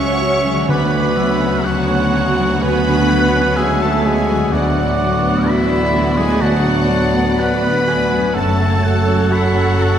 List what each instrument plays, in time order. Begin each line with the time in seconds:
Already playing: cello section C#2, double bass section C#2, grand piano C#2 G#2 F#3 C#4 F#4, harp C#3 F#3 G#3 F#4, viola section C#4 F#4, french horn section C#4, violin section C#5 F#5 C#6, cor anglais C#5, oboe E5
0.22 grand piano F#4
0.45 grand piano F#3
0.52 harp D3
0.56 harp F#3
0.61 harp C#3
0.65 grand piano D2, double bass section D2, french horn section B3, viola section B3 F#4, harp F#4, violin section B5
0.69 cello section D2, cor anglais B4, violin section C#5 F#5, oboe D5
0.93 grand piano D3
1.16 grand piano F#3, oboe E5
1.40 grand piano C#4
1.64 french horn section F#3, grand piano F#4, cor anglais F#4, violin section F#5, oboe F#5
1.88 grand piano C#4
2.14 grand piano F#4
2.39 grand piano F#3
2.62 grand piano D2, french horn section B3, cor anglais B4, oboe G#5, violin section B5
2.88 grand piano D3
3.10 grand piano F#3, oboe F#5
3.35 grand piano C#4
3.56 french horn section G#3, grand piano F#4, cor anglais G#4, oboe E5, violin section G#5
3.81 french horn section A3, grand piano C#4, cor anglais A4, violin section A5
4.04 french horn section G#3, grand piano F#4, cor anglais G#4, violin section G#5
4.30 harp D3, grand piano F#3
4.38 harp F#3
4.43 harp B3
4.47 french horn section F#3, harp F#4
4.52 cello section D2, double bass section D2, grand piano D2, viola section B3 F#4, cor anglais F#4, violin section D5 F#5, oboe D5
4.76 grand piano A2
4.99 grand piano F#3
5.22 grand piano B3
5.46 french horn section E3, cor anglais E4, grand piano F#4, violin section E5, oboe B5
5.70 grand piano B3
5.94 grand piano F#4
6.17 grand piano F#3, french horn section G#3, cor anglais G#4, violin section G#5
6.41 grand piano D2, french horn section F#3, cor anglais F#4, violin section F#5, oboe A5
6.65 grand piano A2
6.89 grand piano F#3
7.14 grand piano B3
7.39 french horn section B3, grand piano F#4, cor anglais B4, oboe F#5, violin section B5
7.63 grand piano B3
7.87 grand piano F#4, oboe G#5
8.11 grand piano F#3
8.17 harp F#2
8.22 harp F#3
8.26 harp C#4
8.31 harp F#4, cor anglais A4, violin section F#5
8.35 double bass section F#1, cello section F#2, grand piano F#2, french horn section A3, viola section F#4 A4, violin section C#5 A5, oboe A5
8.60 grand piano C#3
8.83 grand piano F#3, oboe F#5
9.08 grand piano C#4
9.31 french horn section F#3, cor anglais F#4, grand piano F#4, violin section F#5, oboe B5
9.55 grand piano C#4
9.81 grand piano F#4, oboe A5